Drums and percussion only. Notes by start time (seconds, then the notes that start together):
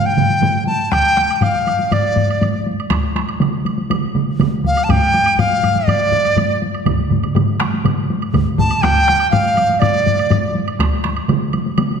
0.06 taiko high
0.17 taiko low-mid, taiko mid, taiko high
0.30 taiko high
0.42 taiko low-mid, taiko mid, taiko high
0.55 taiko high
0.67 taiko high
0.80 taiko high
0.92 taiko rim, taiko, taiko high, high woodblock
1.04 taiko high
1.17 taiko rim, taiko high
1.30 taiko high, high woodblock
1.42 taiko low-mid, taiko high, high woodblock
1.55 taiko high
1.67 taiko high, high woodblock
1.79 taiko high
1.91 taiko low-mid, taiko high, high woodblock
2.04 taiko high
2.16 taiko low-mid, taiko high
2.28 taiko high, high woodblock
2.42 taiko low-mid, taiko high, high woodblock
2.54 taiko high
2.67 taiko high
2.79 taiko high, high woodblock
2.90 taiko rim, taiko, taiko high, high woodblock
3.03 taiko high
3.16 taiko rim, taiko high
3.29 taiko high, high woodblock
3.40 taiko mid, taiko high, high woodblock
3.53 taiko high
3.65 taiko high, high woodblock
3.78 taiko high
3.90 taiko mid, taiko high, high woodblock
4.03 taiko high
4.15 taiko mid, taiko high
4.27 taiko high
4.39 taiko, taiko mid, taiko high, high woodblock
4.52 taiko high
4.64 taiko, taiko high
4.77 taiko high, high woodblock
4.89 taiko, taiko low-mid, taiko high, high woodblock
5.02 taiko high
5.14 taiko high
5.26 taiko high, high woodblock
5.38 taiko low-mid, taiko high, high woodblock
5.51 taiko high
5.63 taiko low-mid, taiko high, high woodblock
5.76 taiko low-mid, taiko high
5.88 taiko low-mid, taiko high, high woodblock
6.01 taiko high
6.12 taiko low-mid, taiko high
6.25 taiko high, high woodblock
6.37 taiko low-mid, taiko high, high woodblock
6.50 taiko high
6.62 taiko high
6.74 taiko high, high woodblock
6.86 taiko, taiko low-mid, taiko mid, taiko high, high woodblock
6.99 taiko high
7.10 taiko low-mid, taiko mid, taiko high
7.23 taiko low-mid, taiko mid, taiko high, high woodblock
7.35 taiko low-mid, taiko mid, taiko high, high woodblock
7.60 taiko rim, taiko high, high woodblock
7.74 taiko high
7.84 taiko low-mid, taiko mid, taiko high, high woodblock
7.98 taiko high
8.10 taiko high
8.22 taiko high, high woodblock
8.34 taiko, taiko low-mid, taiko mid, taiko high, high woodblock
8.46 taiko high
8.58 taiko, taiko low-mid, taiko mid, taiko high
8.71 taiko high, high woodblock
8.83 taiko rim, taiko, taiko high, high woodblock
8.96 taiko high
9.08 taiko rim, taiko high
9.20 taiko high, high woodblock
9.32 taiko low-mid, taiko high, high woodblock
9.46 taiko high
9.57 taiko high, high woodblock
9.69 taiko high
9.82 taiko low-mid, taiko high, high woodblock
10.06 taiko low-mid, taiko high
10.19 taiko high, high woodblock
10.30 taiko low-mid, taiko high, high woodblock
10.44 taiko high
10.55 taiko high
10.68 taiko high, high woodblock
10.79 taiko rim, taiko, taiko high, high woodblock
10.93 taiko high
11.04 taiko rim, taiko high
11.16 taiko high, high woodblock
11.28 taiko mid, taiko high, high woodblock
11.41 taiko high
11.53 taiko high, high woodblock
11.66 taiko high
11.78 taiko mid, taiko high, high woodblock
11.91 taiko high